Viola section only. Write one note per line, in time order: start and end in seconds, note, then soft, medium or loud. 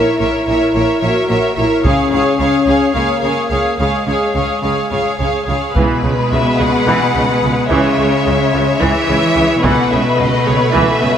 0.00 0.19 A#4 soft
0.20 0.46 A#4 soft
0.47 0.74 A#4 soft
0.76 1.02 A#4 soft
1.03 1.29 A#4 soft
1.31 1.57 A#4 soft
1.58 1.85 A#4 soft
1.86 2.12 G#4 soft
2.13 2.39 G#4 soft
2.40 2.66 G#4 soft
2.67 2.93 G#4 soft
2.94 3.22 G#4 soft
3.24 3.50 G#4 soft
3.51 3.78 G#4 soft
3.80 4.07 G#4 soft
4.08 4.35 G#4 soft
4.36 4.63 G#4 soft
4.64 4.90 G#4 soft
4.92 5.19 G#4 soft
5.20 5.46 G#4 soft
5.47 5.75 G#4 soft
5.76 6.02 E3 soft
5.76 9.60 G#3 soft
6.04 6.12 C#3 soft
6.32 6.40 C#3 soft
6.59 6.67 C#3 soft
6.87 7.13 E3 soft
7.15 7.23 C#3 soft
7.43 7.51 C#3 soft
7.71 7.97 E3 soft
7.99 8.07 C#3 soft
8.26 8.34 C#3 soft
8.54 8.62 C#3 soft
8.81 9.07 E3 soft
9.09 9.17 C#3 soft
9.36 9.44 C#3 soft
9.64 9.90 E3 medium
9.64 11.18 A3 soft
9.91 9.99 C#3 soft
10.17 10.25 C#3 soft
10.46 10.54 C#3 soft
10.74 11.00 E3 medium
11.01 11.09 C#3 soft